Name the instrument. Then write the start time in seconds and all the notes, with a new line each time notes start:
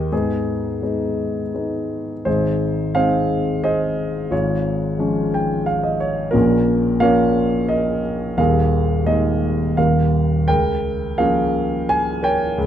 grand piano
Already playing: D#2 G4 A#4 D#5
0.12 G#2 B3 D#4 G#4
0.82 G#3 B3 D#4
1.54 G#3 B3 D#4
2.25 G#1 G#2 D#4 G#4 C5
2.95 G#3 C4 D#4 G#4 C5 F5
3.64 G#4 C5 D#5
4.31 G#1 G#2 F4 G#4 C#5
4.99 F3 G#3 C#4
5.34 G5
5.66 F5
5.83 D#5
6.00 C#5
6.31 A#1 A#2 C#4 F4 A#4
7.00 F3 A#3 C#4 A#4 C#5 F5
7.69 A#4 D#5
8.38 D#1 D#2 G#4 A#4 F5
9.06 G#3 A#3 D#4 G#4 A#4 D#5
9.77 D#1 D#2 A#4 F5
10.48 C#2 A#4 G5
11.18 F3 A#3 C#4 G#4 A#4 F5
11.89 G#5
12.23 A#4 C#5 G5
12.58 C#2